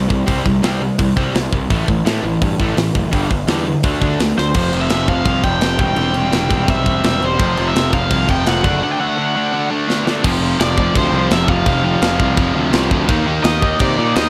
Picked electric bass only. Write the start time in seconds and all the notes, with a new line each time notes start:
0.10 C2
0.28 C2
0.46 C2
0.64 C2
0.99 C2
1.17 C2
1.35 C2
1.53 C2
1.70 A1
1.88 A1
2.06 A2
2.23 A1
2.42 G2
2.60 A1
2.77 A1
2.95 F#1
3.13 G1
3.31 G1
3.48 E2
3.84 D2
4.01 D2
4.19 D2
4.38 D2
4.55 F1
4.73 F1
4.91 F1
5.09 F1
5.25 C2
5.43 F1
5.62 F1
5.79 E1
5.97 E1
6.15 E1
6.33 E1
6.51 E1
6.68 B1
6.86 E1
7.04 E1
7.22 E1
7.39 F1
7.58 F1
7.75 F1
7.94 F1
8.11 C2
8.29 F1
8.47 F1
8.65 F#1
10.25 F1
10.60 F1
10.96 D2
11.12 C2
11.31 F1
11.49 F1
11.66 F1
12.02 F1
12.20 C2
12.38 F1
12.55 D2
12.73 C2
12.92 D2
13.09 D#2
13.44 D#2
13.81 C3
13.98 A#2
14.16 D#2